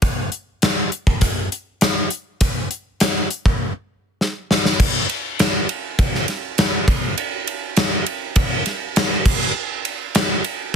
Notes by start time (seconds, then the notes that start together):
0.02 kick, closed hi-hat
0.32 closed hi-hat
0.62 snare, closed hi-hat
0.92 closed hi-hat
1.07 kick
1.21 kick, closed hi-hat
1.52 closed hi-hat
1.81 snare, closed hi-hat
2.10 closed hi-hat
2.41 kick, closed hi-hat
2.71 closed hi-hat
3.00 snare, closed hi-hat
3.30 closed hi-hat
3.46 kick
4.21 snare
4.51 snare
4.65 snare
4.80 kick, crash
5.09 ride
5.39 snare, ride
5.69 ride
5.99 kick, ride
6.15 snare
6.28 snare, ride
6.58 snare, ride
6.88 kick, ride
7.18 ride
7.47 ride
7.76 snare, ride
8.06 ride
8.36 kick, ride
8.66 snare, ride
8.96 snare, ride
9.25 kick, crash
9.85 ride
10.15 snare, ride
10.44 ride